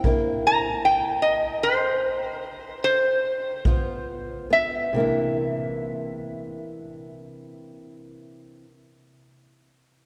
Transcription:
<<
  \new Staff \with { instrumentName = "Resonator guitar played with a steel bar" } { \time 12/8 \key c \mixolydian \tempo 4. = 46 g''16 r16 bes''8 g''8 ees''8 c''4. c''4 r4 e''8 | r1. | }
  \new Staff \with { instrumentName = "Steel-string acoustic guitar" } { \time 12/8 \key c \mixolydian <c bes d' e'>4 r2. r8 <des ces' f'>4 ces'8 | <c e bes d' e'>1. | }
  \new DrumStaff \with { instrumentName = "Drums" } \drummode { \time 12/8 bd4. r4. r4. bd4. | r4. r4. r4. r4. | }
>>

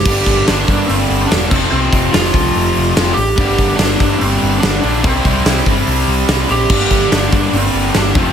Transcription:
<<
  \new Staff \with { instrumentName = "Lead electric guitar" } { \time 4/4 \key g \dorian \tempo 4 = 144 g'4 d'4 c'4 d'8 c'8 | c'4 f'2~ f'8 g'8~ | g'4 d'4 c'4 d'8 d'8 | c'4. r2 g'8~ |
g'4 d'4 c'4 d'8 c'8 | }
  \new Staff \with { instrumentName = "Distorted electric guitar" } { \clef bass \time 4/4 \key g \dorian <g, d g bes d'>2.~ <g, d g bes d'>8 <f, c f a c'>8~ | <f, c f a c'>2.~ <f, c f a c'>8 r8 | <g, d g bes d'>1 | <c g c' e'>1 |
<g, d g bes d'>2.~ <g, d g bes d'>8 <f, c f a c'>8 | }
  \new Staff \with { instrumentName = "Distorted electric guitar" } { \clef bass \time 4/4 \key g \dorian <g, d g>2.~ <g, d g>8 <f, c f>8~ | <f, c f>2. <f, c f>8 r8 | <g, d g>2.~ <g, d g>8 <g, d g>8 | <c g c'>2.~ <c g c'>8 <c g c'>8 |
<g, d g>2.~ <g, d g>8 <f, c f>8 | }
  \new Staff \with { instrumentName = "Picked electric bass" } { \clef bass \time 4/4 \key g \dorian g,,8 g,,8 g,,8 g,8 g,,8 g,,8 e,,8 f,,8 | c,8 f,,8 f,,8 c,8 f,,8 f,,8 f,,8 a,,8 | g,,8 g,,8 g,,8 g,8 g,,8 g,,8 g,,8 bes,,8 | c,8 c,8 c,8 g,,8 c,8 c,8 c,8 bes,,8 |
g,,8 g,,8 g,,8 g,8 g,,8 g,,8 g,,8 f,,8 | }
  \new DrumStaff \with { instrumentName = "Drums" } \drummode { \time 4/4 <cymc bd>8 <hho bd>8 <hho sn>8 <hho bd>8 hho8 hho8 <hho sn>8 <cymc bd>8 | r8 <hho bd>8 <hho sn>8 <hho bd>8 hho8 hho8 <hho sn>8 hho8 | <hho bd>8 <hho bd>8 <hho sn>8 <hho bd>8 hho8 hho8 <hho sn>8 hho8 | <hho bd>8 <hho bd>8 <hho sn>8 <hho bd>8 hho8 hho8 <hho sn>8 hho8 |
<cymc bd>8 <hho bd>8 <hho sn>8 <hho bd>8 hho8 hho8 <hho sn>8 <hho bd>8 | }
>>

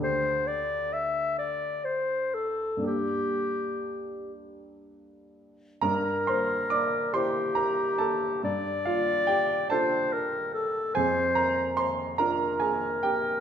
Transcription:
<<
  \new Staff \with { instrumentName = "Clarinet" } { \time 6/8 \key g \dorian \tempo 4. = 46 c''8 d''8 e''8 d''8 c''8 a'8 | g'4. r4. | bes'4. g'4. | d''4. c''8 bes'8 a'8 |
c''4 r8 bes'4. | }
  \new Staff \with { instrumentName = "Grand piano" } { \time 6/8 \key g \dorian << { <d, a d' g' a'>2. | <g, bes d' g' a'>2. | <bes' bes''>8 <c'' c'''>8 <d'' d'''>8 <c'' c'''>8 <bes' bes''>8 <a' a''>8~ | <a' a''>8 <f' f''>8 <g' g''>8 <a' a''>4. |
<aes' aes''>8 <bes' bes''>8 <c'' c'''>8 <bes' bes''>8 <aes' aes''>8 <g' g''>8 | } \\ { r2. | r2. | g,4. <e' g'>4. | g,4. <d' f'>4. |
f,4. <d' f'>4. | } >> }
>>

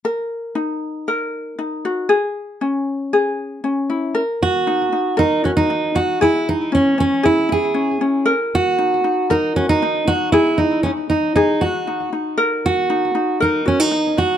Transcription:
<<
  \new Staff \with { instrumentName = "Steel-string acoustic guitar" } { \time 4/4 \key fis \mixolydian \tempo 4 = 117 r1 | r1 | r8 fis'4. dis'8 cis'16 dis'8. fis'8 | e'8 dis'8 cis'8 cis'8 e'8 gis'4 r8 |
r8 fis'4. dis'8 cis'16 dis'8. fis'8 | e'8 dis'8 cis'8 dis'8 dis'8 fis'4 r8 | r8 fis'4. dis'8 cis'16 dis'8. fis'8 | }
  \new Staff \with { instrumentName = "Ukulele" } { \time 4/4 \key fis \mixolydian ais'4 dis'4 ais'4 dis'8 fis'8 | gis'4 cis'4 gis'4 cis'8 e'8 | ais'4 dis'8 dis'8 ais'8 fis'8 dis'8 dis'8 | gis'4 cis'8 cis'8 gis'8 e'8 cis'8 cis'8 |
ais'4 dis'8 dis'8 ais'8 fis'8 dis'8 dis'8 | gis'4 dis'8 dis'8 gis'8 fis'8 dis'8 dis'8 | ais'4 dis'8 dis'8 ais'8 fis'8 dis'8 dis'8 | }
>>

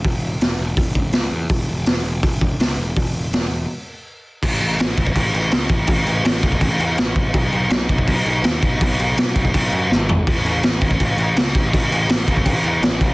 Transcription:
<<
  \new Staff \with { instrumentName = "Picked electric bass" } { \clef bass \time 4/4 \key e \major \tempo 4 = 164 e,,4 e,,8 e,,8 e,,8 e,,8 cis,8 e,8 | e,,8 e,,8 e,,8 e,,8 e,,4 cis,8 e,,8 | e,,4 e,,8 e,,8 r2 | a,,8 a,,8 a,,8 a,,8 a,,8 a,,8 cis,8 a,,8 |
a,,8 a,,8 a,,8 a,,8 a,,8 e,8 a,,4 | b,,8 b,,8 b,,8 b,,8 b,,8 b,,8 dis,8 b,,8 | b,,8 b,,8 b,,8 b,,8 b,,8 fis,8 gis,,4 | a,,8 a,,8 a,,8 a,,8 a,,8 a,,8 cis,8 a,,8 |
a,,8 a,,8 a,,8 a,,8 a,,8 e,8 a,,4 | }
  \new DrumStaff \with { instrumentName = "Drums" } \drummode { \time 4/4 <hho bd>4 <hho sn>4 <hho bd>8 bd8 <hho sn>4 | <hho bd>4 <hho sn>4 <hho bd>8 bd8 <hho sn>4 | <hho bd>4 <hho sn>4 r4 r4 | <cymc bd>8 cymc8 <cymc sn>8 <cymc bd>16 bd16 <cymc bd>8 cymc8 <cymc sn>8 <cymc bd>8 |
<cymc bd>8 cymc8 <cymc sn>8 <cymc bd>16 bd16 <cymc bd>8 cymc8 <cymc sn>8 <cymc bd>8 | <cymc bd>8 cymc8 <cymc sn>8 <cymc bd>16 bd16 <cymc bd>8 cymc8 <cymc sn>8 <cymc bd>8 | <cymc bd>8 cymc8 <cymc sn>8 <cymc bd>16 bd16 <cymc bd>8 cymc8 sn8 tomfh8 | <cymc bd>8 cymc8 <cymc sn>8 <cymc bd>16 bd16 <cymc bd>8 cymc8 <cymc sn>8 <cymc bd>8 |
<cymc bd>8 cymc8 <cymc sn>8 <cymc bd>16 bd16 <cymc bd>8 cymc8 <cymc sn>8 <cymc bd>8 | }
>>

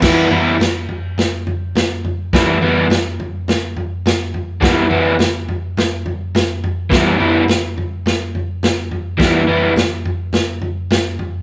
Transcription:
<<
  \new Staff \with { instrumentName = "Overdriven electric guitar" } { \time 4/4 \key e \minor \tempo 4 = 105 <e g b e'>8 <e g b e'>8 r2. | <e g b e'>8 <e g b e'>8 r2. | <e g b e'>8 <e g b e'>8 r2. | <e g b e'>8 <e g b e'>8 r2. |
<e g b e'>8 <e g b e'>8 r2. | }
  \new DrumStaff \with { instrumentName = "Drums" } \drummode { \time 4/4 <cymc bd sn tomfh>8 tomfh8 <sn tomfh>8 tomfh8 <sn tomfh>8 tomfh8 <sn tomfh>8 tomfh8 | <bd sn tomfh>8 tomfh8 <sn tomfh>8 tomfh8 <sn tomfh>8 tomfh8 <sn tomfh>8 tomfh8 | <bd sn tomfh>8 tomfh8 <sn tomfh>8 tomfh8 <sn tomfh>8 tomfh8 <sn tomfh>8 tomfh8 | <bd sn tomfh>8 tomfh8 <sn tomfh>8 tomfh8 <sn tomfh>8 tomfh8 <sn tomfh>8 tomfh8 |
<bd sn tomfh>8 tomfh8 <sn tomfh>8 tomfh8 <sn tomfh>8 tomfh8 <sn tomfh>8 tomfh8 | }
>>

